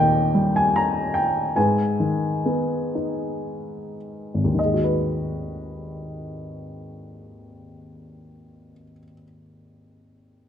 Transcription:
0, 0, Header, 1, 2, 480
1, 0, Start_track
1, 0, Key_signature, 5, "minor"
1, 0, Tempo, 813008
1, 926, Time_signature, 3, 2, 24, 8
1, 926, Tempo, 884956
1, 1406, Tempo, 996678
1, 1886, Tempo, 1145038
1, 2846, Tempo, 1125704
1, 4870, End_track
2, 0, Start_track
2, 0, Title_t, "Upright piano"
2, 0, Program_c, 0, 0
2, 0, Control_c, 0, 64, 127
2, 0, Note_on_c, 0, 39, 49
2, 0, Note_on_c, 0, 46, 37
2, 0, Note_on_c, 0, 51, 41
2, 0, Note_on_c, 0, 67, 45
2, 0, Note_on_c, 0, 75, 60
2, 0, Note_on_c, 0, 79, 64
2, 178, Note_off_c, 0, 67, 0
2, 202, Note_on_c, 0, 55, 38
2, 329, Note_off_c, 0, 79, 0
2, 331, Note_on_c, 0, 80, 57
2, 448, Note_off_c, 0, 80, 0
2, 448, Note_on_c, 0, 82, 57
2, 658, Note_off_c, 0, 46, 0
2, 673, Note_on_c, 0, 79, 57
2, 692, Note_off_c, 0, 82, 0
2, 902, Note_off_c, 0, 39, 0
2, 905, Note_off_c, 0, 55, 0
2, 906, Note_off_c, 0, 51, 0
2, 919, Note_on_c, 0, 71, 37
2, 923, Note_on_c, 0, 80, 51
2, 929, Note_on_c, 0, 44, 40
2, 930, Note_off_c, 0, 79, 0
2, 933, Control_c, 0, 64, 0
2, 935, Note_off_c, 0, 75, 0
2, 1028, Control_c, 0, 64, 127
2, 1160, Note_on_c, 0, 51, 26
2, 1407, Note_on_c, 0, 59, 30
2, 1646, Note_on_c, 0, 63, 28
2, 2098, Note_off_c, 0, 71, 0
2, 2099, Note_off_c, 0, 80, 0
2, 2100, Note_off_c, 0, 51, 0
2, 2260, Note_on_c, 0, 32, 26
2, 2302, Note_on_c, 0, 39, 25
2, 2345, Note_off_c, 0, 59, 0
2, 2345, Note_on_c, 0, 51, 27
2, 2346, Note_off_c, 0, 44, 0
2, 2348, Note_off_c, 0, 63, 0
2, 2363, Note_on_c, 0, 75, 39
2, 2367, Control_c, 0, 64, 0
2, 2385, Note_on_c, 0, 56, 24
2, 2426, Note_on_c, 0, 66, 23
2, 2428, Control_c, 0, 64, 127
2, 2468, Note_on_c, 0, 71, 33
2, 4119, Note_off_c, 0, 32, 0
2, 4162, Note_off_c, 0, 39, 0
2, 4205, Note_off_c, 0, 51, 0
2, 4224, Note_off_c, 0, 75, 0
2, 4246, Note_off_c, 0, 56, 0
2, 4287, Note_off_c, 0, 66, 0
2, 4330, Note_off_c, 0, 71, 0
2, 4870, End_track
0, 0, End_of_file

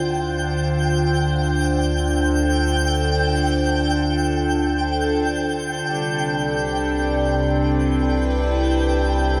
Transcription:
0, 0, Header, 1, 5, 480
1, 0, Start_track
1, 0, Tempo, 500000
1, 9024, End_track
2, 0, Start_track
2, 0, Title_t, "Synth texture"
2, 0, Program_c, 0, 99
2, 0, Note_on_c, 0, 79, 73
2, 9024, Note_off_c, 0, 79, 0
2, 9024, End_track
3, 0, Start_track
3, 0, Title_t, "Ambient pad"
3, 0, Program_c, 1, 92
3, 0, Note_on_c, 1, 50, 77
3, 0, Note_on_c, 1, 62, 69
3, 0, Note_on_c, 1, 65, 58
3, 0, Note_on_c, 1, 72, 62
3, 1295, Note_on_c, 1, 69, 79
3, 5613, Note_off_c, 1, 65, 0
3, 5621, Note_off_c, 1, 50, 0
3, 5628, Note_off_c, 1, 72, 0
3, 5628, Note_on_c, 1, 48, 81
3, 5823, Note_on_c, 1, 60, 83
3, 6560, Note_on_c, 1, 71, 63
3, 7128, Note_on_c, 1, 64, 61
3, 7893, Note_off_c, 1, 69, 0
3, 9024, Note_off_c, 1, 48, 0
3, 9024, Note_off_c, 1, 60, 0
3, 9024, Note_off_c, 1, 62, 0
3, 9024, Note_off_c, 1, 64, 0
3, 9024, Note_off_c, 1, 71, 0
3, 9024, End_track
4, 0, Start_track
4, 0, Title_t, "Harmonium"
4, 0, Program_c, 2, 20
4, 5641, Note_on_c, 2, 62, 58
4, 5648, Note_on_c, 2, 55, 56
4, 9024, Note_off_c, 2, 55, 0
4, 9024, Note_off_c, 2, 62, 0
4, 9024, End_track
5, 0, Start_track
5, 0, Title_t, "Analog synth bass"
5, 0, Program_c, 3, 38
5, 0, Note_on_c, 3, 38, 66
5, 5592, Note_off_c, 3, 38, 0
5, 5640, Note_on_c, 3, 36, 75
5, 9024, Note_off_c, 3, 36, 0
5, 9024, End_track
0, 0, End_of_file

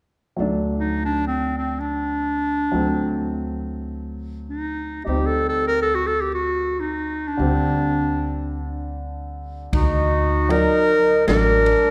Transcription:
0, 0, Header, 1, 6, 480
1, 0, Start_track
1, 0, Tempo, 500000
1, 11429, End_track
2, 0, Start_track
2, 0, Title_t, "Clarinet"
2, 0, Program_c, 0, 71
2, 760, Note_on_c, 0, 63, 73
2, 990, Note_off_c, 0, 63, 0
2, 1009, Note_on_c, 0, 62, 78
2, 1202, Note_off_c, 0, 62, 0
2, 1221, Note_on_c, 0, 60, 72
2, 1494, Note_off_c, 0, 60, 0
2, 1513, Note_on_c, 0, 60, 66
2, 1727, Note_on_c, 0, 62, 75
2, 1742, Note_off_c, 0, 60, 0
2, 3484, Note_off_c, 0, 62, 0
2, 4314, Note_on_c, 0, 63, 68
2, 4806, Note_off_c, 0, 63, 0
2, 4848, Note_on_c, 0, 67, 65
2, 5055, Note_on_c, 0, 69, 75
2, 5069, Note_off_c, 0, 67, 0
2, 5263, Note_off_c, 0, 69, 0
2, 5269, Note_on_c, 0, 69, 78
2, 5429, Note_off_c, 0, 69, 0
2, 5448, Note_on_c, 0, 70, 91
2, 5579, Note_off_c, 0, 70, 0
2, 5588, Note_on_c, 0, 69, 88
2, 5709, Note_on_c, 0, 66, 85
2, 5724, Note_off_c, 0, 69, 0
2, 5828, Note_on_c, 0, 69, 78
2, 5842, Note_off_c, 0, 66, 0
2, 5963, Note_on_c, 0, 67, 69
2, 5978, Note_off_c, 0, 69, 0
2, 6084, Note_off_c, 0, 67, 0
2, 6090, Note_on_c, 0, 66, 77
2, 6525, Note_on_c, 0, 63, 71
2, 6539, Note_off_c, 0, 66, 0
2, 6981, Note_on_c, 0, 62, 80
2, 6996, Note_off_c, 0, 63, 0
2, 8474, Note_off_c, 0, 62, 0
2, 9357, Note_on_c, 0, 66, 77
2, 10089, Note_on_c, 0, 70, 106
2, 10104, Note_off_c, 0, 66, 0
2, 10821, Note_off_c, 0, 70, 0
2, 10827, Note_on_c, 0, 70, 89
2, 11429, Note_off_c, 0, 70, 0
2, 11429, End_track
3, 0, Start_track
3, 0, Title_t, "Accordion"
3, 0, Program_c, 1, 21
3, 9342, Note_on_c, 1, 63, 110
3, 10783, Note_off_c, 1, 63, 0
3, 10830, Note_on_c, 1, 62, 99
3, 11429, Note_off_c, 1, 62, 0
3, 11429, End_track
4, 0, Start_track
4, 0, Title_t, "Upright piano"
4, 0, Program_c, 2, 0
4, 350, Note_on_c, 2, 54, 50
4, 367, Note_on_c, 2, 57, 50
4, 385, Note_on_c, 2, 62, 70
4, 2572, Note_off_c, 2, 54, 0
4, 2581, Note_off_c, 2, 57, 0
4, 2590, Note_off_c, 2, 62, 0
4, 2607, Note_on_c, 2, 54, 52
4, 2628, Note_on_c, 2, 57, 44
4, 2639, Note_on_c, 2, 60, 58
4, 4822, Note_off_c, 2, 54, 0
4, 4832, Note_off_c, 2, 57, 0
4, 4837, Note_off_c, 2, 60, 0
4, 4843, Note_on_c, 2, 63, 50
4, 4861, Note_on_c, 2, 55, 40
4, 4879, Note_on_c, 2, 60, 64
4, 7056, Note_off_c, 2, 63, 0
4, 7065, Note_off_c, 2, 55, 0
4, 7074, Note_off_c, 2, 60, 0
4, 7078, Note_on_c, 2, 50, 54
4, 7097, Note_on_c, 2, 55, 49
4, 7115, Note_on_c, 2, 60, 57
4, 9284, Note_off_c, 2, 50, 0
4, 9294, Note_off_c, 2, 55, 0
4, 9303, Note_off_c, 2, 60, 0
4, 10071, Note_on_c, 2, 54, 58
4, 10093, Note_on_c, 2, 74, 58
4, 10445, Note_off_c, 2, 54, 0
4, 10456, Note_off_c, 2, 74, 0
4, 10823, Note_on_c, 2, 54, 53
4, 10838, Note_on_c, 2, 62, 63
4, 11190, Note_off_c, 2, 54, 0
4, 11198, Note_off_c, 2, 62, 0
4, 11429, End_track
5, 0, Start_track
5, 0, Title_t, "Upright bass"
5, 0, Program_c, 3, 32
5, 375, Note_on_c, 3, 38, 51
5, 2585, Note_off_c, 3, 38, 0
5, 2627, Note_on_c, 3, 38, 56
5, 4832, Note_off_c, 3, 38, 0
5, 4870, Note_on_c, 3, 38, 57
5, 7070, Note_off_c, 3, 38, 0
5, 7098, Note_on_c, 3, 38, 67
5, 9294, Note_off_c, 3, 38, 0
5, 9340, Note_on_c, 3, 38, 72
5, 10228, Note_off_c, 3, 38, 0
5, 10827, Note_on_c, 3, 33, 88
5, 11268, Note_off_c, 3, 33, 0
5, 11429, End_track
6, 0, Start_track
6, 0, Title_t, "Drums"
6, 9340, Note_on_c, 9, 36, 77
6, 9341, Note_on_c, 9, 51, 44
6, 9436, Note_off_c, 9, 36, 0
6, 9437, Note_off_c, 9, 51, 0
6, 10082, Note_on_c, 9, 51, 36
6, 10178, Note_off_c, 9, 51, 0
6, 10825, Note_on_c, 9, 38, 59
6, 10825, Note_on_c, 9, 51, 44
6, 10921, Note_off_c, 9, 38, 0
6, 10921, Note_off_c, 9, 51, 0
6, 11195, Note_on_c, 9, 51, 38
6, 11291, Note_off_c, 9, 51, 0
6, 11429, End_track
0, 0, End_of_file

